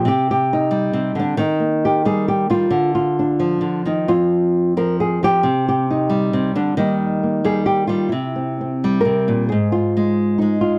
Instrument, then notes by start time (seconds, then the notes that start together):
nylon-string guitar
0.05 C3 G4
0.31 G4
0.53 D#4
0.71 G3
0.93 C3
1.15 D3
1.19 D4
1.37 D#3 D#4
1.60 A#3
1.85 G4
2.05 G3 G#4
2.28 G4
2.50 G3 F4
2.71 D3
2.95 F4
3.19 D4
3.40 F3
3.61 D3
3.85 D#3 D#4
4.08 F2 F4
4.77 F3 A#4
5.00 G#4
5.23 F3 G4
5.43 C3
5.68 G4
5.90 D#4
6.10 G3
6.33 C3
6.55 D3 D4
6.77 D#3 G3 A#3 D#4
7.23 A#3
7.44 G3 G#4
7.66 G4
7.87 G3 F4
8.09 C3 E4
8.36 C4
8.61 C4
8.84 G3
9.01 A#4
9.05 C3
9.28 A#2
9.49 G#2 G#4
9.72 F4
9.97 G#3 D#4
10.38 G#3 D#4
10.61 F4